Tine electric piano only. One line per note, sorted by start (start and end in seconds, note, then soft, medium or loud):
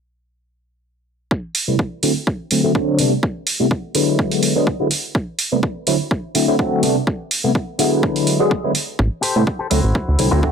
1.67 1.74 C3 medium
1.67 1.74 G3 medium
1.67 1.74 A3 medium
1.67 1.74 B3 medium
1.67 1.75 E4 medium
2.03 2.10 D3 medium
2.03 2.10 F#3 medium
2.03 2.10 A3 medium
2.03 2.11 C4 medium
2.03 2.11 E4 medium
2.51 2.61 D3 medium
2.51 2.61 F#3 medium
2.51 2.61 A3 medium
2.51 2.61 C4 medium
2.51 2.61 E4 medium
2.64 2.70 D3 medium
2.64 2.70 F#3 medium
2.64 2.70 A3 medium
2.64 2.71 C4 medium
2.64 2.71 E4 medium
2.75 2.96 D3 loud
2.75 2.96 F#3 medium
2.75 2.96 A3 medium
2.75 2.97 C4 medium
2.75 2.97 F#4 loud
2.99 3.11 C3 medium
2.99 3.11 G3 medium
2.99 3.11 A3 medium
2.99 3.11 B3 medium
2.99 3.11 D4 medium
3.60 3.66 C3 medium
3.60 3.66 G3 medium
3.60 3.66 A3 medium
3.60 3.66 B3 medium
3.60 3.67 E4 medium
3.94 4.52 D3 medium
3.94 4.53 F#3 medium
3.94 4.53 G#3 medium
3.94 4.53 B3 medium
3.94 4.53 E4 medium
4.55 4.66 D3 medium
4.55 4.66 F#3 medium
4.55 4.66 G#3 medium
4.55 4.66 B3 medium
4.55 4.66 G#4 loud
4.79 4.86 D3 medium
4.79 4.86 F#3 medium
4.79 4.86 G#3 medium
4.79 4.86 B3 medium
4.79 4.87 E4 loud
5.51 5.58 C3 medium
5.51 5.58 G3 medium
5.51 5.58 A3 medium
5.51 5.58 B3 medium
5.51 5.59 E4 medium
5.87 5.94 D3 medium
5.87 5.94 F#3 medium
5.87 5.95 A3 medium
5.87 5.95 C4 medium
5.87 5.95 E4 medium
6.35 6.45 D3 medium
6.35 6.45 F#3 medium
6.35 6.45 A3 medium
6.35 6.45 C4 medium
6.35 6.45 E4 medium
6.48 6.54 D3 medium
6.48 6.54 F#3 medium
6.48 6.54 A3 medium
6.48 6.55 C4 medium
6.48 6.55 E4 medium
6.59 6.80 D3 medium
6.59 6.80 F#3 medium
6.59 6.80 A3 medium
6.59 6.81 C4 medium
6.59 6.81 F#4 loud
6.83 6.95 C3 medium
6.83 6.95 G3 medium
6.83 6.95 A3 medium
6.83 6.95 B3 medium
6.83 6.95 D4 medium
7.44 7.50 C3 medium
7.44 7.50 G3 medium
7.44 7.50 A3 medium
7.44 7.51 B3 medium
7.44 7.51 E4 medium
7.78 8.36 D3 medium
7.78 8.37 F#3 medium
7.78 8.37 G#3 medium
7.78 8.37 B3 medium
7.78 8.37 E4 medium
8.39 8.50 D3 loud
8.39 8.50 F#3 medium
8.39 8.50 G#3 medium
8.39 8.50 B3 medium
8.39 8.50 G#4 loud
8.64 8.70 D3 medium
8.64 8.70 F#3 medium
8.64 8.70 G#3 medium
8.64 8.71 B3 medium
8.64 8.71 E4 medium
9.36 9.42 C3 medium
9.36 9.42 G3 medium
9.36 9.42 A3 medium
9.36 9.43 B3 medium
9.36 9.43 E4 medium
9.71 9.78 D3 medium
9.71 9.78 F#3 medium
9.71 9.79 A3 medium
9.71 9.79 C4 medium
9.71 9.79 E4 medium
10.18 10.29 D3 medium
10.18 10.29 F#3 medium
10.18 10.29 A3 medium
10.18 10.29 C4 medium
10.18 10.29 E4 medium
10.31 10.38 D3 medium
10.31 10.38 F#3 medium
10.31 10.38 A3 medium
10.31 10.38 C4 medium
10.31 10.39 E4 medium
10.43 10.52 D3 medium
10.43 10.52 F#3 medium
10.43 10.52 A3 medium
10.43 10.52 C4 medium
10.43 10.52 F#4 loud